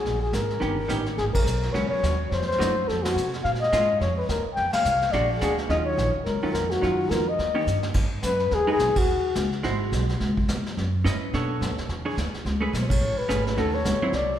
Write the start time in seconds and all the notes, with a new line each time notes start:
Already playing: G#4
0.05 A#1, brush sweep, kick, snare
0.22 G#4
0.33 G#1 A#4, kick, snare, hi-hat pedal
0.50 snare
0.60 G1 D#3 B3 C#4 G4, brush sweep, kick, snare
0.88 A1 D#3 B3 C#4 G4, kick, snare, hi-hat pedal
1.06 snare
1.17 G#1 G#4, brush sweep, kick, snare
1.33 A#4, muted upright bass stroke, kick, ride
1.44 B1, hi-hat pedal
1.63 snare
1.73 C#2 F#3 B3 C#4 C#5, brush sweep, kick, snare
1.89 C#5, muted upright bass stroke
2.03 D#2, kick, snare, hi-hat pedal
2.31 F2 C5, brush sweep, kick, snare
2.42 snare
2.47 C5
2.52 snare
2.59 F#2 F3 A3 D#4 F#4, kick, snare, hi-hat pedal
2.88 F2 A4, brush sweep, kick, snare
3.03 F#4, snare, ride
3.15 C3, hi-hat pedal
3.34 snare
3.44 A#2 F5, brush sweep, kick, snare
3.55 snare
3.61 D#5, snare
3.72 G#2 G#3 C#4 F4, kick, snare, hi-hat pedal
4.00 F2 C#5, brush sweep, kick, snare
4.17 B4
4.29 D#2 A#4, kick, snare, hi-hat pedal
4.45 muted upright bass stroke
4.55 F2 G5, brush sweep, kick, snare
4.73 F5, muted upright bass stroke, snare, ride
4.85 C2, hi-hat pedal
5.02 snare
5.12 A#1 G#3 D4 F#4 D5, brush sweep, kick, snare
5.40 D2 G#3 D4 F#4 G#4, kick, snare, hi-hat pedal
5.58 snare
5.69 D#2 D#3 F#3 C#4 F4 D#5, brush sweep, kick, snare
5.85 C#5
5.97 A#1, kick, snare, hi-hat pedal
6.15 muted upright bass stroke
6.25 C#2 A#4, brush sweep, kick, snare
6.43 D#3 F#3 C#4 F4, muted upright bass stroke
6.52 F2 A#4, kick, snare, hi-hat pedal
6.71 F#4, snare
6.82 F#2 D#3 F#3 C#4 F4, brush sweep, kick, snare
7.10 F2 A#4, kick, snare, hi-hat pedal
7.29 D#5
7.39 D#2, brush sweep, kick, snare
7.55 D#3 A#3 C#4 G4
7.67 G2, hi-hat pedal
7.83 snare
7.94 G#2, brush sweep, kick, snare, crash
8.23 F#2 B4, kick, snare, hi-hat pedal
8.40 snare
8.51 D#2 G#4, brush sweep, kick, snare
8.67 G#3 D#4 F#4 B4
8.73 G#4
8.79 B1, kick, snare, hi-hat pedal
8.95 F#4, muted upright bass stroke, kick, ride
9.06 D#2, brush sweep
9.35 C#2, kick, snare, hi-hat pedal
9.52 snare
9.63 G#1 G#3 E4 F#4 C5, brush sweep, kick, snare
9.92 B1, kick, snare, hi-hat pedal
10.09 snare
10.20 C#2, brush sweep, kick, snare
10.37 kick
10.48 E2, kick, snare, hi-hat pedal
10.66 snare
10.77 F#2, brush sweep, kick, snare
11.04 G#2 C#4 E4 B4 D#5, kick, snare, hi-hat pedal
11.33 B2 B3 D4 A4 C#5, brush sweep, kick, snare
11.61 F#2, kick, snare, hi-hat pedal
11.70 D2
11.78 B1, snare
11.89 E2, brush sweep, kick, snare
12.05 E3 D4 G#4 C#5
12.17 D2, kick, snare, hi-hat pedal
12.33 muted upright bass stroke, snare
12.45 C#2, brush sweep, kick, snare
12.61 A3 C#4 G#4 B4
12.73 B1, kick, snare, hi-hat pedal
12.81 C5
12.88 C#5, kick, ride
13.01 A1, brush sweep
13.18 B4, muted upright bass stroke
13.29 G#1 A3 C#4 G#4 B4, kick, snare, hi-hat pedal
13.47 B4, snare
13.57 D#2 D#3 A3 C#4 F#4 A4, brush sweep, kick, snare
13.74 C#5
13.84 C#2, kick, snare, hi-hat pedal
14.01 F#3 C4 E4, muted upright bass stroke
14.12 C2 D5, brush sweep, kick, snare